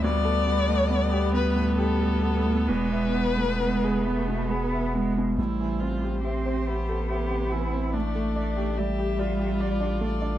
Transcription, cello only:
\new Staff \with { instrumentName = "Cello" } { \clef bass \time 3/4 \key a \minor \tempo 4 = 70 g2. | gis4 gis8 a8 b8 gis8 | g4 c'8 b4. | a8 a8 g2 | }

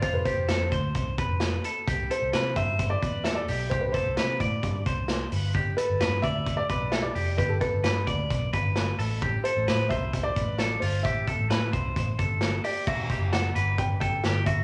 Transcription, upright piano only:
\new Staff \with { instrumentName = "Upright piano" } { \time 4/4 \key a \minor \tempo 4 = 131 c''16 b'16 c''4 r2 r8 | r8 c''4 e''8. d''8. e''16 d''8. | c''16 b'16 c''4 r2 r8 | r8 b'4 e''8. d''8. e''16 d''8. |
b'16 a'16 b'4 r2 r8 | r8 c''4 e''8. d''4~ d''16 c''8 | e''2. r8 d''8 | \key e \minor e''4 fis''4 g''8 g''4 e''8 | }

